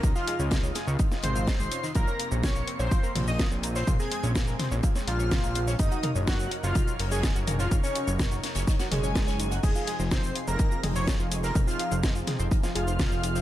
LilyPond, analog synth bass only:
\new Staff \with { instrumentName = "Analog synth bass" } { \clef bass \time 4/4 \key f \phrygian \tempo 4 = 125 des,16 r8 des,8. r16 des,16 r8 aes,,8. aes,,16 r8 | bes,,16 r8 bes,,8. r16 bes,,16 r8 bes,,8. bes,,8. | bes,,16 r8 bes,,8. r16 bes,,16 r8 bes,,8. bes,,8. | ges,,16 r8 ges,,8. r16 ges,,16 r8 ges,,8. ges,,8. |
ges,,16 r8 ges,,8. r16 ges,,16 r8 ges,,8. ges,,8. | f,,16 r8 f,,8. r16 f,,16 r8 f,,8. f,,8. | f,,16 r8 f,,8. r16 f,,16 r8 f,,8. f,,8. | }